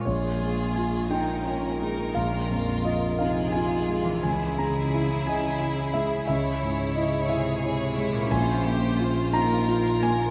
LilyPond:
<<
  \new Staff \with { instrumentName = "Grand piano" } { \time 6/8 \key des \lydian \tempo 4. = 58 << { des''4 aes''8 g''4. | f''4 ees''8 f''8 aes''4 | aes''8 bes''4 aes''4 fes''8 | fes''4 ees''8 fes''8 r4 |
aes''4. bes''4 aes''8 | } \\ { bes,,8 aes8 f'8 ees'8 f'8 aes8 | bes,,8 f,8 f'8 ees'8 f'8 aes8 | des,8 aes8 fes'8 ees''8 fes'8 aes8 | des,8 aes,8 fes'8 fes'8 fes'8 aes8 |
bes,,8 bes8 f'8 ees'8 f'8 bes8 | } >> }
  \new Staff \with { instrumentName = "Violin section" } { \time 6/8 \key des \lydian << { aes'4. bes'4.~ | bes'4. aes'4. | aes'2. | des''2. |
c''4. bes'4. | } \\ { f'4. ees'8 des'8 ees'8 | f'4. f'4. | fes'2. | fes'4. aes'8 aes'8 fes'8 |
f'8 g'8 f'2 | } >> }
  \new Staff \with { instrumentName = "Harp" } { \time 6/8 \key des \lydian <bes, aes f' des''>2.~ | <bes, aes f' des''>2. | <fes aes fes'>2.~ | <fes aes fes'>2. |
<bes, bes des' f'>2. | }
  \new Staff \with { instrumentName = "Cello section" } { \clef bass \time 6/8 \key des \lydian bes,2.~ | bes,4. c4. | des2.~ | des4. c4. |
bes,2. | }
>>